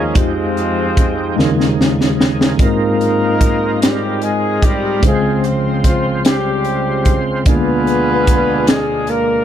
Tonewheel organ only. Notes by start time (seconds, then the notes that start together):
Already playing: F3 A#3 C#4 D#4 G#4
0.17 G#3 C4 G4
1.38 C#3 A#3 G#4
2.60 G#3 C4 F4 A#4
5.02 C#3 C4 C5
7.46 B2 D3 D4